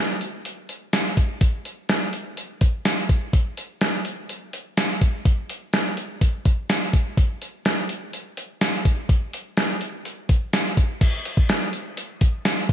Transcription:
0.21 closed hi-hat medium
0.45 closed hi-hat medium
0.69 closed hi-hat medium
0.93 snare loud
0.93 closed hi-hat medium
1.17 kick medium
1.17 closed hi-hat medium
1.41 kick loud
1.41 closed hi-hat medium
1.65 closed hi-hat medium
1.89 snare medium
1.89 closed hi-hat medium
2.13 closed hi-hat medium
2.37 closed hi-hat medium
2.61 kick medium
2.61 closed hi-hat medium
2.85 snare medium
2.85 closed hi-hat medium
3.09 kick medium
3.09 closed hi-hat medium
3.33 kick loud
3.33 closed hi-hat medium
3.57 closed hi-hat medium
3.81 snare medium
3.81 closed hi-hat medium
4.05 closed hi-hat medium
4.29 closed hi-hat medium
4.53 closed hi-hat medium
4.77 snare loud
4.77 closed hi-hat medium
5.01 kick medium
5.01 closed hi-hat medium
5.25 kick loud
5.25 closed hi-hat medium
5.50 closed hi-hat medium
5.73 snare medium
5.73 closed hi-hat medium
5.97 closed hi-hat medium
6.21 kick medium
6.21 closed hi-hat medium
6.45 kick medium
6.45 closed hi-hat medium
6.70 snare loud
6.70 closed hi-hat medium
6.93 kick medium
6.93 closed hi-hat medium
7.17 kick loud
7.17 closed hi-hat medium
7.42 closed hi-hat medium
7.65 snare medium
7.65 closed hi-hat medium
7.89 closed hi-hat medium
8.13 closed hi-hat medium
8.37 closed hi-hat medium
8.61 snare loud
8.61 closed hi-hat medium
8.85 kick medium
8.85 closed hi-hat medium
9.09 kick loud
9.09 closed hi-hat medium
9.34 closed hi-hat medium
9.57 snare loud
9.57 closed hi-hat medium
9.81 closed hi-hat medium
10.05 closed hi-hat medium
10.29 kick medium
10.29 closed hi-hat medium
10.53 snare loud
10.53 closed hi-hat medium
10.77 kick medium
10.77 closed hi-hat medium
11.01 kick loud
11.01 closed hi-hat loud
11.01 crash medium
11.25 closed hi-hat medium
11.37 kick medium
11.49 snare loud
11.49 closed hi-hat medium
11.73 closed hi-hat medium
11.97 closed hi-hat medium
12.21 kick medium
12.21 closed hi-hat medium
12.45 snare loud
12.45 closed hi-hat medium
12.69 kick loud
12.69 open hi-hat medium

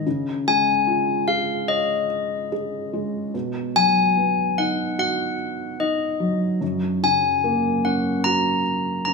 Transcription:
0.06 3.30 C#3 medium
0.48 2.06 G#3 medium
0.48 1.25 G#5 medium
0.87 2.47 F4 medium
1.28 2.51 G#4 medium
1.28 1.70 F5 medium
1.68 3.30 C#5 medium
1.68 2.88 D#5 medium
2.52 3.32 G#4 medium
2.93 3.33 G#3 soft
3.34 6.58 B2 medium
3.76 5.35 F#3 medium
3.76 4.60 G#5 loud
4.17 5.76 B3 soft
4.58 5.78 D#4 medium
4.58 4.98 F#5 medium
4.98 6.57 F#4 medium
4.98 5.83 F#5 medium
5.80 6.59 D#4 medium
5.80 6.37 D#5 medium
6.20 6.60 F#3 soft
6.61 9.13 F#2 medium
7.03 8.61 C#3 soft
7.03 7.87 G#5 medium
7.44 9.01 A#3 medium
7.85 9.06 C#4 medium
7.85 8.26 F#5 medium
8.24 9.13 F#4 medium
8.24 9.04 A#5 loud
9.05 9.13 C#4 medium
9.05 9.13 A#5 medium

